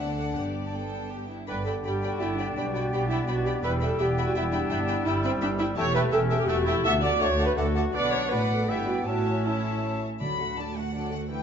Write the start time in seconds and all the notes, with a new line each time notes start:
Already playing: D3 A3 D4 A4 D5 F#5
0.00 D2
0.17 F#5
0.35 G1 G2 B3 D4 G4 D5 F#5
0.66 A5
0.73 B3 D4 A4 G5
1.11 G4
1.30 E4
1.47 G1 G2 D3 G3 D4 B4 D5 G5 B5
1.65 A4 D5 G5 B5
1.84 G1 G2 G3 G4 D5 G5 B5
2.03 D5 G5 B5
2.10 F#4
2.21 G1 G2 B3 E4 D5 G5 B5
2.39 D4 D5 G5 B5
2.56 B1 B2 G3 B3 D5 G5 B5
2.74 F#4 D5 G5 B5
2.93 B1 B2 G4 D5 G5 B5
3.10 E4 D5 G5 B5
3.27 B1 B2 F#4 D5 G5 B5
3.46 G4 D5 G5 B5
3.63 E1 E2 G3 E4 B4 E5 G5 B5
3.81 A4 E5 G5 B5
3.99 E1 E2 B3 G4 E5 G5 B5
4.17 E5 G5 B5
4.25 F#4
4.35 E1 E2 E4 E5 G5 B5
4.52 D4 E5 G5 B5
4.70 G1 G2 G3 B3 E5 G5 B5
4.88 E5 G5 B5
5.06 G1 G2 G3 E4 E5 G5 B5
5.24 C4 E5 G5 B5
5.41 G1 G2 D4 E5 G5 B5
5.59 E4 E5 G5 B5
5.76 E1 E2 A3 G4 C#5 E5 G5 A5
5.94 A3 B4 E5 G5 A5
6.12 E1 E2 A3 C#4 G4 A4 E5 G5 A5
6.30 A3 E5 G5 A5
6.38 G4
6.48 E1 E2 A3 F#4 E5 G5 A5
6.67 A3 E4 E5 G5 A5
6.84 D2 A3 B3 F#4 D5 E5 F#5 A5
7.03 A3 D5 F#5 A5
7.20 D2 A3 C#5 D5 F#5 A5
7.39 A3 D5 F#5 A5
7.46 B4
7.57 D2 A3 F#4 A4 D5 F#5 A5
7.75 A3 F#4 D5 F#5 A5
7.94 B1 B2 B3 D4 F#4 D5 F#5 B5
8.12 C#5
8.31 A1 A2 B3 F#4 B4 D5 F#5 B5
8.57 A4
8.68 G1 G2 B3 E4 G4 E5 G5 B5
8.87 F#4 D5
9.06 A1 A2 C#4 E4 F#4 C#5 E5 A5
9.44 C#4 E4 C#5 E5 A5
10.20 D2 D3 F#3 D4 A4 D5 B5
10.38 A3 F#4 F#5
10.57 F#3 D4 A4 D5 A5
10.76 A3 F#4 F#5
10.94 F#3 D4 A4 D5
11.12 A3 F#4 F#5
11.30 E3 D4 E4 B4 G5